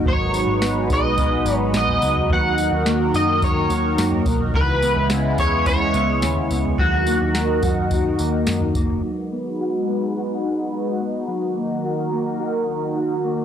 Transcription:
Already playing: clean electric guitar A#3 D#4, analog synth pad D#4 F#4
0.06 picked electric bass G#1, clean electric guitar F#3 C#5, analog synth pad G#3 B4, kick, floor tom
0.33 clean electric guitar F#3, tambourine
0.47 picked electric bass G#1
0.62 clean electric guitar B3, snare, tambourine
0.89 picked electric bass B1, clean electric guitar D#4 D#5, kick, tambourine
1.18 clean electric guitar B3, kick, floor tom, tambourine
1.45 picked electric bass G#1, clean electric guitar F#3, tambourine
1.54 clean electric guitar C#5
1.74 picked electric bass A#1, clean electric guitar B3 D#5, snare, tambourine
1.88 floor tom
2.02 picked electric bass C#2, clean electric guitar F#3, tambourine
2.16 floor tom
2.30 picked electric bass D#2, analog synth pad D#3 A#4, clean electric guitar F#3 F#5, kick, floor tom
2.58 clean electric guitar F#3, tambourine
2.72 picked electric bass D#2
2.86 clean electric guitar A#3, snare, tambourine
3.14 picked electric bass F#2, clean electric guitar D#4 D#5, tambourine
3.42 clean electric guitar G#3 C#5, kick, floor tom, tambourine
3.56 clean electric guitar A#3
3.70 picked electric bass D#2, clean electric guitar F#3, tambourine
3.98 picked electric bass F#2, clean electric guitar A#3, snare, tambourine
4.12 floor tom
4.26 picked electric bass B1, clean electric guitar F#3, kick, tambourine
4.40 floor tom
4.54 picked electric bass C#2, analog synth pad C#3 G#3 B3 E4, clean electric guitar E3 B4, kick, floor tom
4.82 clean electric guitar B3, tambourine
4.96 picked electric bass C#2
5.10 clean electric guitar C#4, snare, tambourine
5.38 picked electric bass E2, clean electric guitar G#4 C#5, kick, tambourine
5.66 clean electric guitar C#4 C#5, kick, floor tom, tambourine
5.94 picked electric bass C#2, clean electric guitar B3, tambourine
6.22 picked electric bass D#2, clean electric guitar C#4, snare, tambourine
6.37 floor tom
6.51 picked electric bass C#2, clean electric guitar B3, tambourine
6.65 floor tom
6.77 picked electric bass D#2, analog synth pad D#3 D#4 F#4 A#4, clean electric guitar F#3 F#4, kick, floor tom
7.07 clean electric guitar A#3, tambourine
7.22 picked electric bass D#2
7.35 clean electric guitar D#4, snare, tambourine
7.63 picked electric bass F#2, clean electric guitar F#4, kick, floor tom, tambourine
7.91 clean electric guitar D#4, kick, floor tom, tambourine
8.19 picked electric bass D#2, clean electric guitar A#3, tambourine
8.47 picked electric bass F#2, clean electric guitar D#4, snare, tambourine
8.61 floor tom
8.75 picked electric bass F#1, clean electric guitar A#3, kick, tambourine
8.90 floor tom
9.03 clean electric guitar F#3, analog synth pad G#3 D#4 F#4 B4
9.32 clean electric guitar B3
9.60 clean electric guitar F#4
9.87 clean electric guitar B3
10.16 clean electric guitar F#4
10.44 clean electric guitar D#4
10.72 clean electric guitar F#4
11.00 clean electric guitar B3
11.27 analog synth pad D#3 A#4, clean electric guitar F#3
11.55 clean electric guitar A#3
11.84 clean electric guitar F#4
12.12 clean electric guitar A#3
12.40 clean electric guitar F#4
12.68 clean electric guitar D#4
12.96 clean electric guitar F#4
13.24 clean electric guitar A#3

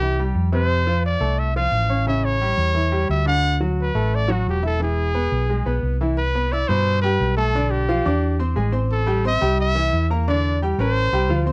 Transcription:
Already playing: fingered electric bass C2, trumpet G4
0.01 grand piano E3 E4
0.19 grand piano G3 G4
0.35 fingered electric bass F2
0.52 grand piano C3 C4, trumpet C5
0.87 grand piano F3 F4
1.06 trumpet D5
1.20 fingered electric bass C2, grand piano A3 A4
1.39 trumpet E5
1.56 grand piano F3 F4, trumpet F5
1.72 fingered electric bass A1
1.89 grand piano C#4 C#5
2.07 grand piano C#3 C#4, trumpet E5
2.25 trumpet C#5
2.41 grand piano G3 G4
2.58 fingered electric bass E2
2.74 grand piano E3 E4
2.92 grand piano G3 G4
3.09 fingered electric bass D2, trumpet E5
3.25 grand piano D3 D4, trumpet F#5
3.60 grand piano F#3 F#4
3.82 trumpet B4
3.95 fingered electric bass A1, grand piano A3 A4
4.15 trumpet D5
4.28 grand piano F#3 F#4, trumpet F#4
4.46 fingered electric bass E1, trumpet G4
4.63 grand piano E4 E5, trumpet A4
4.80 grand piano E3 E4, trumpet G#4
5.15 grand piano B3 B4
5.32 fingered electric bass B1
5.49 grand piano G#3 G#4
5.66 fingered electric bass B1, grand piano B3 B4
5.83 fingered electric bass C2
6.01 grand piano E3 E4
6.18 trumpet B4
6.35 grand piano B3 B4 B5
6.52 grand piano E4 E5 E6, trumpet D5
6.68 fingered electric bass G2, grand piano B2 C5 B5, trumpet C5
7.02 grand piano G3 G4 G5, trumpet B4
7.20 fingered electric bass B1
7.37 grand piano A3 A4 A5, trumpet A4
7.55 grand piano D3 D4 D5
7.71 trumpet G4
7.89 grand piano F3 F4 F5
8.05 fingered electric bass E2, grand piano D4 D5 D6
8.39 grand piano C4 C5 C6
8.56 fingered electric bass A1, grand piano G#3 G#4 G#5
8.72 grand piano C4 C5 C6
8.92 trumpet A4
9.06 grand piano G3 G4 G5
9.25 grand piano C4 C5 C6, trumpet E5
9.41 fingered electric bass C2, grand piano G3 G4 G5
9.61 trumpet E5
9.75 grand piano E3 E4 E5
9.93 fingered electric bass E2
10.10 grand piano A#3 A#4 A#5
10.28 grand piano D3 D4 D5, trumpet D5
10.62 grand piano G3 G4 G5
10.78 fingered electric bass A1, grand piano C#4 A#4, trumpet C5
11.12 fingered electric bass C2, grand piano G3 G4 G5
11.29 fingered electric bass D2, grand piano F3 F4 F5
11.46 grand piano C4 C5 C6

